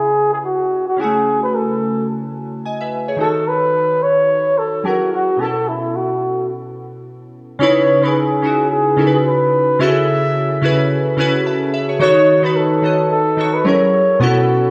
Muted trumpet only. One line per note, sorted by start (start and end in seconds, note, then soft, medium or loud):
0.00 0.32 G#4 loud
0.33 0.38 G#4 medium
0.45 0.85 F#4 medium
0.88 1.02 F#4 medium
1.00 1.43 G#4 loud
1.43 1.57 B4 loud
1.55 2.10 A4 medium
3.21 3.50 A4 loud
3.48 4.05 B4 loud
4.03 4.60 C#5 loud
4.58 4.87 A4 loud
4.86 5.13 F#4 medium
5.13 5.42 F#4 medium
5.41 5.70 A4 loud
5.68 5.97 E4 medium
5.96 6.50 F#4 medium
7.61 8.05 C#5 loud
8.04 8.11 G#4 medium
8.04 8.08 B4 medium
8.10 8.18 B4 medium
8.16 8.71 G#4 medium
8.71 9.10 G#4 medium
9.14 9.19 G#4 medium
9.26 9.83 B4 loud
9.81 10.91 E5 loud
12.01 12.45 C#5 loud
12.44 12.58 B4 loud
12.56 13.11 A4 loud
13.11 13.56 A4 loud
13.54 13.68 B4 loud
13.66 14.23 C#5 loud
14.22 14.70 F#4 medium